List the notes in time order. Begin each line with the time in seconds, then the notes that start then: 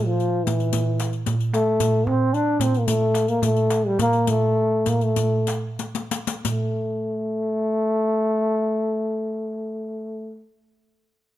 0.06 F3
0.20 riq
0.44 E3, riq, darbuka dum
0.60 riq, darbuka ka
0.73 riq, darbuka dum
1.00 riq, darbuka tek
1.13 riq
1.26 riq, darbuka dum
1.40 riq, darbuka ka
1.54 A3, riq, darbuka tek
1.80 riq, darbuka dum
2.07 C4, darbuka dum
2.34 D4, riq
2.60 C4, riq, darbuka dum
2.73 riq, darbuka ka
2.79 A#3
2.87 A3, riq, darbuka dum
3.14 riq, darbuka tek
3.28 A#3, riq
3.42 A3, riq, darbuka dum
3.56 riq, darbuka ka
3.70 riq, darbuka tek
3.86 G3
3.99 A#3, riq, darbuka dum
4.13 riq
4.27 A3, riq, darbuka dum
4.58 darbuka ka
4.86 A#3, riq, darbuka dum
5.01 A3, riq, darbuka ka
5.16 riq, darbuka dum
5.47 riq, darbuka tek
5.79 riq, darbuka tek
5.95 riq, darbuka ka
6.11 riq, darbuka tek
6.27 riq, darbuka ka
6.44 A3, riq, darbuka dum